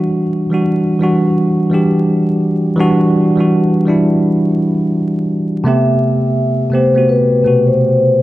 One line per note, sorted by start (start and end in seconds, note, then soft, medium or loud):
0.00 0.42 E3 medium
0.00 0.43 G3 medium
0.00 0.44 D4 medium
0.00 0.45 F#4 loud
0.50 0.97 E3 medium
0.50 0.97 G3 medium
0.50 0.98 D4 medium
0.50 0.99 F#4 medium
0.99 1.68 E3 medium
0.99 1.68 G3 medium
0.99 1.69 D4 medium
0.99 1.69 F#4 loud
1.70 2.72 E3 medium
1.70 2.73 G3 medium
1.70 2.74 D4 medium
1.74 2.74 G4 medium
2.76 3.31 E3 loud
2.76 3.32 G3 loud
2.76 3.32 D4 loud
2.81 3.33 F#4 loud
3.36 3.83 E3 medium
3.36 3.83 G3 medium
3.36 3.84 D4 medium
3.40 3.85 F#4 medium
3.85 5.21 E3 medium
3.85 5.21 G3 medium
3.85 5.22 D4 medium
3.89 5.23 E4 loud
5.64 6.65 C3 loud
5.64 6.66 A3 medium
5.64 6.67 B3 medium
5.64 6.67 G4 loud
5.64 6.69 E5 loud
6.70 6.92 C3 medium
6.70 6.93 A3 medium
6.70 6.94 B3 medium
6.70 7.05 C5 medium
6.75 6.94 G4 medium
6.93 7.40 C3 medium
6.93 7.41 A3 medium
6.93 7.41 B3 medium
6.98 7.42 F#4 medium
7.09 7.63 B4 loud
7.43 8.22 B2 medium
7.43 8.22 C3 medium
7.43 8.22 A3 medium
7.47 8.22 F#4 medium
7.67 8.22 C5 medium